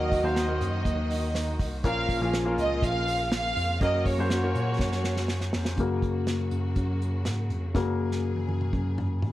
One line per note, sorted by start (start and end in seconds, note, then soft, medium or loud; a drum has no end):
0.00 0.22 D#2 loud
0.00 0.57 D#3 medium
0.00 1.82 D#3 medium
0.00 0.84 F#3 medium
0.00 1.82 F#3 medium
0.00 0.19 A#3 medium
0.00 5.74 A#3 medium
0.00 0.19 D#4 medium
0.00 0.20 F#4 medium
0.00 0.84 F#4 medium
0.00 1.83 F#4 medium
0.00 0.20 A#4 medium
0.00 0.25 D#5 medium
0.12 kick medium
0.12 hi-hat pedal medium
0.12 open hi-hat medium
0.23 0.58 D#2 medium
0.23 0.45 A#3 medium
0.23 0.45 D#4 medium
0.23 0.46 F#4 medium
0.23 0.46 C5 medium
0.23 0.38 F5 medium
0.36 1.57 D#5 medium
0.36 snare loud
0.36 hi-hat pedal medium
0.36 open hi-hat medium
0.47 1.34 A#3 medium
0.47 1.34 D#4 medium
0.47 1.34 F#4 medium
0.47 1.34 A#4 medium
0.61 0.84 F#2 medium
0.61 hi-hat pedal medium
0.61 open hi-hat medium
0.85 1.56 D#2 loud
0.85 kick medium
0.85 hi-hat pedal medium
0.85 open hi-hat medium
1.10 1.59 D#3 medium
1.10 1.59 D#4 medium
1.10 hi-hat pedal medium
1.10 open hi-hat medium
1.35 snare loud
1.35 hi-hat pedal medium
1.35 open hi-hat medium
1.60 1.84 C2 medium
1.60 kick medium
1.60 hi-hat pedal medium
1.60 open hi-hat medium
1.84 2.18 A#1 loud
1.84 2.54 A#2 medium
1.84 5.74 C#3 medium
1.84 3.53 F3 medium
1.84 3.80 F3 medium
1.84 2.16 A#3 medium
1.84 2.16 C#4 medium
1.84 3.53 F4 loud
1.84 2.17 F4 medium
1.84 3.79 F4 medium
1.84 2.17 A#4 medium
1.84 2.30 F5 loud
1.84 kick loud
1.84 hi-hat pedal medium
1.84 open hi-hat medium
2.09 kick medium
2.09 hi-hat pedal medium
2.09 open hi-hat medium
2.21 2.55 A#1 loud
2.21 2.43 A#3 medium
2.21 2.43 C#4 medium
2.21 2.43 F4 medium
2.21 2.43 G#4 medium
2.33 snare loud
2.33 hi-hat pedal medium
2.33 open hi-hat medium
2.45 3.31 A#3 medium
2.45 3.31 C#4 medium
2.45 3.31 F4 medium
2.45 3.32 A#4 medium
2.58 2.81 C#2 medium
2.58 2.82 D#5 loud
2.58 hi-hat pedal medium
2.58 open hi-hat medium
2.83 3.53 A#1 loud
2.83 3.32 F5 loud
2.83 kick medium
2.83 hi-hat pedal medium
2.83 open hi-hat medium
3.07 hi-hat pedal medium
3.07 open hi-hat medium
3.32 3.78 F5 loud
3.32 snare loud
3.32 hi-hat pedal medium
3.32 open hi-hat medium
3.56 3.79 F2 medium
3.56 hi-hat pedal medium
3.56 open hi-hat medium
3.80 4.15 F#2 loud
3.80 5.49 F#3 medium
3.80 5.76 F#3 medium
3.80 4.13 A#3 medium
3.80 4.14 C#4 medium
3.80 5.49 F#4 loud
3.80 5.76 F#4 loud
3.80 4.14 F#4 medium
3.80 4.14 A#4 medium
3.80 4.07 D#5 loud
3.80 kick loud
3.80 hi-hat pedal medium
3.80 open hi-hat loud
4.06 5.53 C#5 medium
4.06 kick medium
4.06 hi-hat pedal medium
4.06 open hi-hat medium
4.18 4.52 F#2 medium
4.18 4.40 A#3 medium
4.18 4.40 C#4 medium
4.18 4.40 F#4 medium
4.18 4.40 C5 medium
4.30 snare loud
4.30 hi-hat pedal medium
4.30 open hi-hat medium
4.43 5.28 A#3 medium
4.43 5.28 C#4 medium
4.43 5.29 F#4 medium
4.43 5.29 A#4 medium
4.55 4.78 A#2 medium
4.55 hi-hat pedal medium
4.55 open hi-hat medium
4.79 5.49 F#2 loud
4.79 kick loud
4.79 snare medium
4.92 snare medium
5.04 snare medium
5.17 snare medium
5.28 snare medium
5.41 snare medium
5.53 5.76 F2 medium
5.53 snare medium
5.65 snare medium
5.78 6.48 F#2 loud
5.78 9.32 C#3 medium
5.78 6.48 C#3 soft
5.78 9.32 F#3 medium
5.78 6.49 F#3 soft
5.78 9.32 A#3 medium
5.78 6.49 A#3 medium
5.78 7.73 F#4 medium
5.78 kick medium
5.78 closed hi-hat medium
6.02 kick medium
6.02 closed hi-hat medium
6.27 snare loud
6.27 closed hi-hat medium
6.51 6.75 F#2 medium
6.51 closed hi-hat medium
6.76 7.22 F#2 loud
6.76 kick medium
6.76 closed hi-hat medium
7.02 closed hi-hat medium
7.25 7.48 G#2 medium
7.25 snare medium
7.25 closed hi-hat medium
7.50 7.73 F2 medium
7.50 closed hi-hat medium
7.74 8.45 F#2 medium
7.74 8.07 C#3 medium
7.74 8.08 F#3 medium
7.74 8.08 A#3 medium
7.74 9.32 G#4 medium
7.74 kick loud
7.74 snare soft
8.11 snare soft
8.36 high tom medium
8.49 8.72 F#2 medium
8.49 high tom medium
8.61 mid tom medium
8.73 9.19 F#2 loud
8.73 kick medium
8.73 mid tom medium
8.98 mid tom medium
9.23 9.32 G#2 medium
9.23 mid tom medium